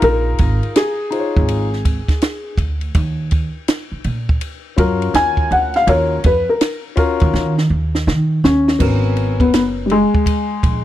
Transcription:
0.00 0.34 A#1 loud
0.00 0.94 D#4 loud
0.00 0.91 F4 medium
0.00 0.92 G#4 medium
0.00 0.92 A#4 loud
0.00 0.72 A#4 loud
0.00 ride medium
0.38 0.59 G#1 medium
0.38 kick medium
0.38 ride medium
0.63 ride soft
0.76 2.55 G#4 loud
0.76 snare loud
0.76 hi-hat pedal medium
0.76 ride medium
1.11 1.66 D#4 medium
1.11 1.67 F4 medium
1.11 1.67 G#4 medium
1.11 1.21 C5 medium
1.11 ride medium
1.20 1.71 C#5 medium
1.37 1.99 G#1 medium
1.37 kick loud
1.48 ride medium
1.73 snare soft
1.85 kick medium
1.85 ride medium
2.08 kick medium
2.08 snare soft
2.08 ride soft
2.22 snare loud
2.22 hi-hat pedal soft
2.22 ride medium
2.58 2.89 D2 medium
2.58 kick loud
2.58 ride medium
2.81 ride soft
2.94 3.46 D#2 loud
2.94 kick loud
2.94 ride medium
3.31 kick medium
3.31 ride medium
3.68 snare loud
3.68 hi-hat pedal medium
3.68 ride medium
3.92 muted upright bass stroke soft
4.04 4.36 A#2 medium
4.04 ride medium
4.29 kick loud
4.41 ride medium
4.76 5.09 F#2 medium
4.76 5.82 C#4 medium
4.76 5.82 F4 medium
4.76 5.82 F#4 medium
4.76 5.83 A#4 medium
4.76 kick medium
4.76 ride medium
5.02 ride soft
5.14 5.45 D#2 medium
5.14 5.52 G#5 loud
5.14 snare loud
5.14 hi-hat pedal soft
5.14 ride medium
5.37 kick medium
5.51 5.82 D2 medium
5.51 5.75 F#5 medium
5.51 ride medium
5.74 5.88 F5 loud
5.74 snare soft
5.74 ride soft
5.86 6.19 D#2 loud
5.86 6.15 C#4 medium
5.86 6.16 F4 medium
5.86 6.16 F#4 medium
5.86 6.17 A#4 medium
5.86 6.26 C#5 loud
5.86 ride medium
6.24 6.44 F2 medium
6.24 6.47 B4 medium
6.24 kick medium
6.24 ride medium
6.49 6.82 A#4 medium
6.61 snare loud
6.61 hi-hat pedal medium
6.61 ride medium
6.96 7.52 C#4 medium
6.96 7.52 F4 medium
6.96 7.52 F#4 medium
6.96 7.53 A#4 medium
6.96 kick medium
6.96 ride medium
7.20 7.33 D#2 medium
7.20 kick loud
7.20 ride soft
7.34 7.65 D#3 loud
7.34 snare medium
7.58 snare medium
7.70 8.09 D#2 medium
7.95 snare medium
8.07 8.38 D#3 loud
8.07 snare medium
8.44 8.75 D#2 medium
8.44 9.36 C#4 loud
8.44 snare loud
8.68 snare loud
8.79 9.40 G#1 medium
8.79 9.84 B3 medium
8.79 9.84 C#4 medium
8.79 9.85 F#4 medium
8.79 9.85 A#4 medium
8.79 kick loud
8.79 crash medium
9.16 ride medium
9.40 10.03 F#1 medium
9.40 9.52 B3 medium
9.40 kick medium
9.40 ride soft
9.53 9.61 B3 loud
9.53 snare loud
9.53 hi-hat pedal medium
9.53 ride medium
9.86 9.90 G3 medium
9.86 ride medium
9.91 10.84 G#3 loud
10.14 kick medium
10.26 kick medium
10.26 ride medium
10.63 10.84 A#1 medium
10.63 kick medium
10.63 ride medium

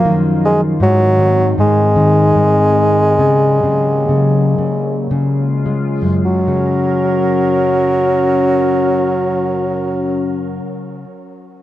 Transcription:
0.00 0.75 F#2 medium
0.00 0.76 F#2 medium
0.00 3.14 D#3 medium
0.00 0.76 F3 soft
0.00 0.17 A#3 loud
0.00 0.77 F4 medium
0.05 0.78 D#3 soft
0.45 0.61 G#3 medium
0.80 1.57 G#2 medium
0.80 3.17 G#2 medium
0.80 1.53 F#3 medium
0.80 3.17 C4 medium
1.19 1.95 D#3 soft
1.58 2.34 G#2 soft
1.58 5.08 G#3 medium
1.96 3.16 D#3 medium
2.35 3.16 G#2 soft
3.18 6.20 C#3 medium
3.18 3.62 C#3 medium
3.18 5.07 F#3 medium
3.18 5.07 A#3 medium
3.63 4.08 C#3 soft
4.09 4.57 C#3 soft
4.58 5.09 C#3 soft
5.10 6.21 C#3 medium
5.10 6.23 G#3 medium
5.10 6.23 F4 medium
5.66 6.22 G#3 soft
6.02 10.58 F#2 soft
6.24 10.50 F#3 medium
6.24 10.51 F#3 medium
6.24 10.50 C#4 medium
6.24 10.50 A#4 medium
6.47 11.04 C#3 medium

